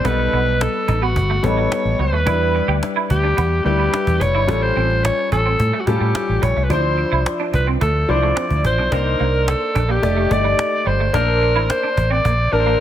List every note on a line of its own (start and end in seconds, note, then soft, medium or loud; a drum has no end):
0.04 0.27 B1 medium
0.04 1.02 G3 medium
0.04 1.03 B3 medium
0.04 0.13 B3 medium
0.04 1.03 D#4 medium
0.04 1.03 A4 medium
0.04 0.63 B4 medium
0.04 cajon bass loud
0.19 muted clean electric guitar stroke soft
0.32 0.66 B1 medium
0.32 0.41 B3 medium
0.32 cajon slap soft
0.47 cajon slap soft
0.60 1.05 A4 medium
0.60 muted clean electric guitar stroke soft
0.60 cajon slap loud
0.88 1.18 A1 medium
0.88 0.96 D#4 medium
0.88 cajon bass medium
1.02 1.10 B3 medium
1.02 1.46 F#4 medium
1.16 1.38 G1 medium
1.16 cajon bass medium
1.30 1.38 A3 medium
1.43 1.66 A1 medium
1.43 2.16 G3 medium
1.43 2.17 B3 medium
1.43 2.17 D#4 medium
1.43 2.17 A4 medium
1.43 2.02 C#5 medium
1.43 muted clean electric guitar stroke soft
1.43 cajon bass medium
1.58 1.65 F#3 medium
1.72 muted clean electric guitar stroke soft
1.72 cajon slap loud
1.85 1.96 A1 medium
1.99 2.12 C#2 medium
1.99 2.07 F#3 medium
1.99 2.84 B4 medium
2.12 2.23 D#2 medium
2.12 2.21 A3 medium
2.25 2.60 E2 medium
2.25 3.24 G3 medium
2.25 3.24 D4 medium
2.25 3.24 E4 medium
2.25 2.34 E4 medium
2.25 3.25 B4 medium
2.25 cajon bass loud
2.54 muted clean electric guitar stroke soft
2.54 cajon slap soft
2.68 2.79 D2 medium
2.68 2.76 G4 medium
2.68 cajon slap soft
2.83 cajon slap medium
2.96 3.04 E4 medium
3.10 3.32 D2 medium
3.10 3.62 G4 medium
3.10 muted clean electric guitar stroke soft
3.10 cajon bass medium
3.23 3.31 D4 medium
3.37 3.60 E2 medium
3.37 3.45 B3 medium
3.37 cajon bass medium
3.64 3.87 D2 medium
3.64 4.38 G3 medium
3.64 4.38 D4 medium
3.64 4.39 E4 medium
3.64 4.23 G4 medium
3.64 4.39 B4 medium
3.64 muted clean electric guitar stroke soft
3.64 cajon slap soft
3.79 3.87 B3 medium
3.93 4.01 D4 medium
3.93 cajon slap loud
4.07 4.18 E2 medium
4.07 cajon bass medium
4.20 4.35 F1 medium
4.20 4.64 C#5 loud
4.20 muted clean electric guitar stroke soft
4.20 cajon bass medium
4.35 4.46 G1 medium
4.35 4.43 E4 medium
4.47 4.71 A1 medium
4.47 5.46 G3 medium
4.47 4.56 A3 medium
4.47 5.46 C#4 medium
4.47 5.46 F4 medium
4.47 5.46 A4 medium
4.47 cajon bass loud
4.63 5.06 C5 loud
4.63 muted clean electric guitar stroke soft
4.76 5.09 A1 medium
4.76 4.84 C4 medium
4.76 cajon slap soft
4.91 cajon slap soft
5.04 5.32 C#5 loud
5.04 muted clean electric guitar stroke soft
5.04 cajon slap loud
5.32 5.54 A1 medium
5.32 5.40 C#4 medium
5.32 5.82 A4 loud
5.32 cajon bass medium
5.46 5.54 C4 medium
5.60 5.70 A2 medium
5.60 cajon bass medium
5.73 5.81 A3 medium
5.80 5.88 F#4 medium
5.87 5.98 A2 medium
5.87 6.60 G3 medium
5.87 6.61 C#4 medium
5.87 6.61 F4 medium
5.87 6.45 G4 medium
5.87 6.61 A4 medium
5.87 muted clean electric guitar stroke soft
5.87 cajon bass medium
6.01 6.12 A2 medium
6.01 6.09 G3 medium
6.15 muted clean electric guitar stroke soft
6.15 cajon slap loud
6.29 6.40 A1 medium
6.42 6.54 A#1 medium
6.42 6.50 G3 medium
6.42 6.65 C#5 medium
6.42 cajon bass medium
6.56 6.70 C2 medium
6.56 6.65 A3 medium
6.56 cajon slap soft
6.64 6.72 B4 medium
6.69 7.03 D2 loud
6.69 7.68 F3 medium
6.69 7.68 D4 medium
6.69 6.78 D4 medium
6.69 7.68 E4 medium
6.69 7.68 C5 medium
6.69 7.27 C5 medium
6.69 cajon bass loud
6.98 muted clean electric guitar stroke soft
6.98 cajon slap soft
7.12 7.23 C2 medium
7.12 7.20 E4 medium
7.12 cajon slap soft
7.26 cajon slap medium
7.40 7.48 D4 medium
7.53 7.75 C2 medium
7.53 7.67 B4 medium
7.53 muted clean electric guitar stroke soft
7.53 cajon bass medium
7.67 7.75 C4 medium
7.81 8.03 D2 medium
7.81 7.89 A3 medium
7.81 8.12 A4 medium
7.81 cajon bass loud
8.08 8.31 C2 medium
8.08 8.82 F3 medium
8.08 8.82 D4 medium
8.08 8.82 E4 medium
8.08 8.83 C5 medium
8.08 8.65 D5 medium
8.08 muted clean electric guitar stroke soft
8.08 cajon slap soft
8.23 8.31 A3 medium
8.36 8.44 C4 medium
8.36 cajon slap loud
8.50 8.61 D2 medium
8.50 cajon bass medium
8.65 8.79 A1 medium
8.65 8.94 C5 medium
8.65 muted clean electric guitar stroke soft
8.65 cajon bass loud
8.78 8.89 B1 medium
8.78 8.86 D4 medium
8.92 9.14 C2 medium
8.92 9.90 A#3 medium
8.92 9.01 C4 medium
8.92 9.90 D4 medium
8.92 9.90 D#4 medium
8.92 9.51 A#4 medium
8.92 9.90 C5 medium
8.92 cajon bass loud
9.06 muted clean electric guitar stroke soft
9.19 9.53 C2 medium
9.19 9.28 A#3 medium
9.19 cajon slap soft
9.34 cajon slap soft
9.48 9.92 A4 medium
9.48 muted clean electric guitar stroke soft
9.48 cajon slap medium
9.75 9.98 A#1 medium
9.75 9.83 D4 medium
9.75 cajon bass medium
9.89 9.97 A#3 medium
9.89 10.34 G4 medium
10.02 10.25 F1 loud
10.02 10.27 A3 medium
10.02 10.27 D#4 medium
10.02 10.27 G4 medium
10.02 10.28 D5 medium
10.02 cajon bass medium
10.17 10.25 A3 medium
10.30 10.53 G1 medium
10.30 11.04 A3 medium
10.30 11.04 D#4 medium
10.30 11.04 G4 medium
10.30 11.04 D5 medium
10.30 10.89 D5 loud
10.30 muted clean electric guitar stroke soft
10.30 cajon bass medium
10.44 10.52 G3 medium
10.58 muted clean electric guitar stroke soft
10.58 cajon slap loud
10.86 11.08 G1 medium
10.86 10.94 G3 medium
10.86 11.14 C5 medium
11.00 11.08 A3 medium
11.13 11.56 A#1 loud
11.13 12.11 A#3 medium
11.13 11.22 A#3 medium
11.13 12.12 D4 medium
11.13 11.72 A#4 loud
11.13 12.12 C5 medium
11.13 12.12 A5 medium
11.13 cajon bass loud
11.42 muted clean electric guitar stroke soft
11.42 cajon slap soft
11.56 11.67 A1 medium
11.56 11.64 E4 medium
11.56 cajon slap soft
11.70 12.13 C5 loud
11.70 cajon slap loud
11.83 11.91 D4 medium
11.97 12.19 A1 medium
11.97 muted clean electric guitar stroke soft
11.97 cajon bass medium
12.10 12.19 C4 medium
12.10 12.54 D5 loud
12.25 12.47 A#1 medium
12.25 12.33 A#3 medium
12.25 cajon bass medium
12.52 12.74 A1 medium
12.52 12.80 A#3 medium
12.52 12.80 D4 medium
12.52 12.80 A#4 loud
12.52 12.59 A#4 medium
12.52 12.80 A5 medium
12.52 muted clean electric guitar stroke soft
12.52 cajon slap soft
12.60 12.80 C5 medium
12.66 12.74 A#3 medium